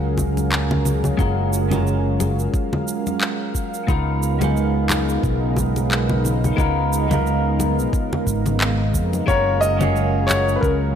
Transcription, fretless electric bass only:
0.00 1.12 C#2 medium
1.19 2.47 F#1 medium
3.88 5.17 C#2 medium
5.23 6.52 B1 medium
6.58 7.86 C#2 medium
8.27 8.96 G#1 medium
8.94 9.20 F2 medium
9.28 10.56 F#1 medium
10.63 10.95 C#2 medium

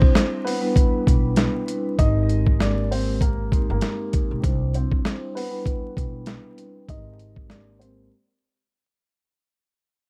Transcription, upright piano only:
0.00 0.43 C4 medium
0.00 0.42 C5 medium
0.45 1.95 B3 medium
0.45 1.94 B4 medium
1.99 2.57 D#4 medium
1.99 2.56 D#5 loud
2.60 2.88 D4 medium
2.60 2.88 D5 medium
2.91 3.19 C4 medium
2.91 3.19 C5 medium
3.21 3.67 A#3 medium
3.21 3.66 A#4 medium
3.71 4.41 A#3 medium
3.71 4.40 A#4 medium
4.75 5.33 C4 medium
4.75 5.32 C5 medium
5.35 6.85 B3 medium
5.35 6.84 B4 medium
6.89 7.47 D#4 medium
6.89 7.47 D#5 loud
7.50 7.78 D4 medium
7.50 7.77 D5 medium
7.79 8.08 C4 medium
7.79 8.07 C5 medium

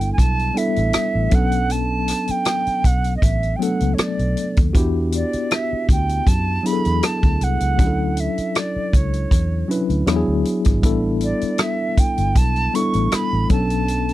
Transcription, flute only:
0.00 0.12 G5 medium
0.13 0.21 G#5 medium
0.20 0.59 A5 medium
0.58 1.36 E5 medium
1.35 1.73 F#5 medium
1.72 2.32 A5 medium
2.31 2.88 G5 medium
2.86 3.16 F#5 medium
3.17 3.25 D#5 medium
3.23 3.58 E5 medium
3.56 3.64 G5 medium
3.63 3.96 F#5 medium
3.94 4.03 C#5 soft
4.01 4.58 D5 medium
5.16 5.55 D5 medium
5.54 5.90 E5 medium
5.91 6.30 G5 medium
6.28 6.68 A5 medium
6.66 7.06 B5 medium
7.05 7.45 A5 medium
7.44 8.22 F#5 medium
8.20 8.60 E5 medium
8.58 8.98 D5 medium
8.96 9.71 C#5 medium
11.24 11.62 D5 medium
11.61 12.01 E5 medium
11.99 12.39 G5 medium
12.38 12.77 A5 medium
12.75 13.17 C#6 medium
13.15 13.51 B5 medium
13.52 14.13 A5 medium

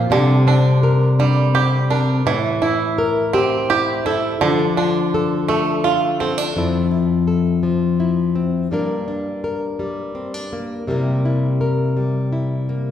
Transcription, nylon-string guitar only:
0.00 0.11 C4 medium
0.10 2.21 C3 medium
0.10 2.22 G3 medium
0.10 0.47 C4 medium
0.10 1.18 D4 medium
0.10 0.83 G4 medium
0.47 1.53 C4 medium
0.83 1.90 A#4 medium
1.19 2.22 D4 medium
1.55 2.22 C4 medium
1.91 2.22 A#4 medium
2.26 4.37 A2 medium
2.62 3.69 E4 medium
2.98 3.34 A#4 medium
3.34 4.06 G4 medium
3.70 4.37 E4 medium
4.07 4.43 A4 medium
4.41 6.52 D3 medium
4.41 6.53 F3 medium
4.41 4.77 F4 medium
4.41 5.13 A4 medium
4.78 5.84 F4 medium
5.14 5.48 A4 medium
5.49 6.20 A4 medium
5.85 6.52 F4 medium
6.21 6.53 A4 medium
6.56 8.71 F2 soft
6.56 7.62 F3 soft
6.56 8.34 C4 soft
6.56 6.90 E4 soft
6.56 7.26 A4 soft
6.91 7.99 E4 soft
7.27 8.67 A4 soft
7.63 8.67 F3 soft
8.00 8.68 E4 soft
8.35 8.68 C4 soft
8.71 10.83 G2 soft
8.71 9.79 G3 soft
8.71 10.52 A#3 soft
8.71 9.07 D4 soft
8.71 9.44 A#4 soft
9.08 10.14 D4 soft
9.44 10.84 A#4 soft
9.79 10.83 G3 soft
10.15 10.34 C4 soft
10.34 10.88 D4 soft
10.53 10.84 A#3 soft
10.87 12.91 C3 medium
10.87 11.95 G3 soft
10.87 12.68 A#3 soft
10.87 11.24 E4 soft
10.87 11.60 A#4 soft
11.25 12.31 E4 soft
11.61 12.91 A#4 soft
11.97 12.91 G3 medium
12.33 12.91 E4 soft
12.69 12.91 A#3 soft

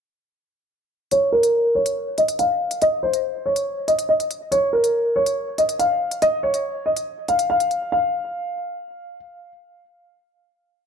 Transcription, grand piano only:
1.12 1.28 C#5 medium
1.32 1.73 A#4 medium
1.75 2.15 C#5 medium
2.18 2.34 D#5 medium
2.39 2.79 F5 medium
2.82 2.98 D#5 loud
3.03 3.43 C5 medium
3.46 3.86 C#5 medium
3.88 4.04 D#5 medium
4.09 4.49 D#5 medium
4.52 4.68 C#5 medium
4.73 5.13 A#4 medium
5.16 5.56 C#5 medium
5.58 5.75 D#5 medium
5.79 6.19 F5 medium
6.22 6.38 D#5 loud
6.43 6.83 C#5 medium
6.86 7.26 D#5 medium
7.29 7.45 F5 medium
7.50 7.90 F5 medium
7.92 9.16 F5 medium

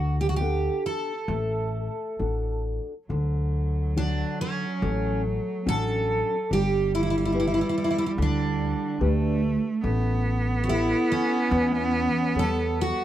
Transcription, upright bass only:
0.00 0.67 D2 medium
1.28 1.87 A1 medium
2.19 2.78 A1 medium
3.10 4.22 D2 medium
4.82 5.37 A1 loud
5.67 6.21 A1 medium
6.51 7.59 G1 medium
8.18 8.72 D2 loud
9.01 9.55 D2 medium
9.84 10.93 A1 medium
11.51 12.06 E2 loud
12.36 12.91 E2 medium

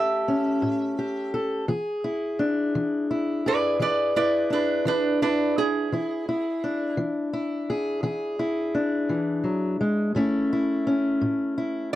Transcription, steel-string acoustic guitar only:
0.00 0.21 A2 medium
0.00 1.65 A3 medium
0.00 0.27 C#4 medium
0.00 0.97 G4 medium
0.00 1.33 A4 medium
0.28 1.65 C#4 medium
0.62 1.26 A2 medium
0.99 1.65 G4 medium
1.34 1.65 A4 medium
1.68 2.32 E3 medium
1.68 3.46 G#4 medium
2.04 3.10 E4 medium
2.39 4.49 D4 medium
2.75 3.38 E3 medium
3.11 4.16 E4 medium
3.46 3.80 G#4 medium
3.79 4.43 E3 medium
3.79 7.68 G#4 medium
4.16 5.22 E4 medium
4.50 5.87 D4 medium
4.85 5.49 E3 medium
5.22 5.57 E4 medium
5.58 5.93 E4 medium
5.92 6.56 E3 medium
5.92 6.28 E4 medium
6.29 7.33 E4 medium
6.64 8.73 D4 medium
6.97 7.61 E3 medium
7.33 8.39 E4 medium
7.70 8.02 G#4 medium
8.03 8.67 E3 medium
8.03 10.15 G#4 medium
8.39 10.17 E4 medium
8.75 10.11 D4 soft
9.09 9.45 E3 medium
9.44 9.79 F#3 medium
9.81 10.15 G#3 medium
10.15 10.78 A2 medium
10.15 11.95 A3 medium
10.15 10.86 C#4 medium
10.15 10.52 E4 medium
10.53 11.57 E4 medium
10.87 11.95 C#4 medium
11.21 11.85 A2 medium
11.58 11.93 E4 medium

